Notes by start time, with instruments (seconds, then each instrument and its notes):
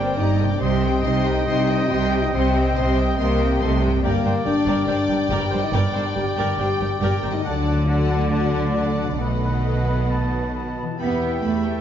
Already playing: double bass section G1, cello section G2, harp G2 D3 G3 G4, trombone section A#2 G3, french horn section C4, viola section A#4, violin section C5 G5, trumpet D5, clarinet D5, oboe G5, flute G5
0.16 double bass section G1, cello section G2, french horn section D#4, viola section G4 D5, violin section D#5 A#5
0.38 harp C3, viola section A#4, violin section G5
0.47 harp G3, french horn section D4, violin section D5
0.52 harp D#4
0.56 harp G4
0.60 double bass section C2, cello section C3, trombone section C3 G3, french horn section C4, violin section C5 C6, viola section C5 D#5, clarinet D#5, trumpet D#5, oboe G5, flute G5
0.82 viola section C5 D#5, violin section G5
1.04 double bass section C2, cello section C3, french horn section D#4, viola section C5 D#5, violin section D#5 C6
1.25 viola section C5 D#5, violin section G5
1.47 double bass section C2, cello section C3, french horn section D#4, viola section C5 D#5, violin section D#5 C6
1.67 viola section C5 D#5, violin section G5
1.89 double bass section C2, cello section C3, french horn section G4, viola section C5 D#5, violin section G5 C6
2.11 viola section C5 D#5, violin section G5
2.21 french horn section D#4, violin section D#5
2.31 double bass section C2, cello section C3, french horn section C4, viola section C5 D#5, violin section C5 C6
2.53 viola section C5 D#5, violin section G5
2.75 double bass section C2, cello section C3, french horn section C4, violin section C5 C6, viola section C5 D#5
2.96 viola section C5 D#5, violin section G5
3.17 double bass section C2, cello section C3, french horn section A#3, violin section A#4 C6, viola section C5 D#5
3.39 viola section C5 D#5, violin section G5
3.60 double bass section C2, cello section C3, french horn section A3, violin section A4 C6, viola section C5 D#5
3.81 viola section C5 D#5, violin section G5
3.85 harp G2
3.90 harp G3
3.94 harp D4
3.99 french horn section A#3, harp G4, clarinet D5, viola section D5
4.03 double bass section G1, cello section G2, trombone section D3 G3, viola section A#4, violin section A#4 G5, trumpet D5, oboe G5, flute G5
4.24 double bass section G1, cello section G2, viola section A#4 C5, clarinet D5, oboe G5, flute G5
4.45 double bass section G1, cello section G2, french horn section D4, viola section A#4 D5, clarinet D5, violin section D5, oboe G5, flute G5
4.65 double bass section G1, cello section G2, viola section A#4 D5, clarinet D5, oboe G5, flute G5
4.86 double bass section G1, cello section G2, french horn section D4, viola section A#4 C5, clarinet D5, violin section D5, oboe G5, flute G5
5.08 double bass section G1, cello section G2, viola section A#4 D5, clarinet D5, flute G5, oboe G5
5.30 double bass section G1, cello section G2, french horn section G4, viola section A#4 D5, clarinet D5, oboe G5, violin section G5, flute G5
5.51 double bass section G1, cello section G2, viola section A#4 C5, clarinet D5, oboe G5, flute G5
5.62 french horn section D#4, violin section D#5
5.72 double bass section G1, cello section G2, french horn section D4, viola section A#4 D5, violin section D5, clarinet D5, oboe G5, flute G5
5.94 double bass section G1, cello section G2, viola section A#4 C5, clarinet D5, oboe G5, flute G5
6.13 double bass section G1, cello section G2, french horn section G4, viola section A#4 D5, clarinet D5, oboe G5, violin section G5, flute G5
6.35 double bass section G1, cello section G2, viola section A#4 D5, clarinet D5, oboe G5, flute G5
6.58 double bass section G1, cello section G2, french horn section G4, viola section A#4 C5, clarinet D5, oboe G5, violin section G5, flute G5
6.79 double bass section G1, cello section G2, viola section A#4 D5, clarinet D5, oboe G5, flute G5
7.01 double bass section G1, cello section G2, french horn section G4, viola section A#4 D5, clarinet D5, violin section G5, oboe G5, flute G5
7.23 double bass section G1, cello section G2, harp D3, viola section A#4 C5, clarinet D5, oboe G5, flute G5
7.31 harp A3, french horn section D#4, violin section D#5
7.36 harp D4
7.40 harp F#4
7.44 double bass section D2, cello section D3, trombone section D3 F#3, french horn section D4, viola section A4 D5, trumpet D5, clarinet D5, violin section D5 F#5, oboe F#5, flute A5
7.67 clarinet D5, oboe F#5, flute A5
7.86 french horn section F#4, viola section A4 D5, clarinet D5, violin section F#5, oboe F#5, flute A5
8.10 clarinet D5, oboe F#5, flute A5
8.30 french horn section F#4, viola section A4 D5, clarinet D5, violin section F#5, oboe F#5, flute A5
8.53 clarinet D5, oboe F#5, flute A5
8.75 french horn section D4, viola section A4 D5, violin section D5 F#5, clarinet D5, oboe F#5, flute A5
8.98 clarinet D5, oboe F#5, flute A5
9.03 harp B2
9.08 harp B3
9.12 harp D#4
9.17 trombone section D#3, french horn section A3, harp F#4, violin section A4 F#5
9.21 double bass section B1, cello section B2, trumpet B4, viola section B4 D#5, clarinet D#5, oboe F#5, flute B5
9.43 clarinet D#5, oboe F#5, flute B5
9.65 clarinet D#5, oboe F#5, flute B5
9.87 clarinet D#5, flute B5
10.09 clarinet D#5, oboe A5, flute B5
10.31 clarinet D#5, flute B5
10.53 clarinet D#5, oboe A5, flute B5
10.76 clarinet D#5, flute B5
10.82 harp E3
10.86 harp B3
10.91 harp E4
10.95 harp G4, clarinet B4
10.99 double bass section E2, cello section B3, french horn section G4 B4, viola section G4, violin section G4 E5 B5, trumpet E5, oboe G5
11.21 violin section B4 G5
11.43 double bass section E2, cello section A3, viola section G4, violin section G4 E5 B5
11.63 violin section B4 G5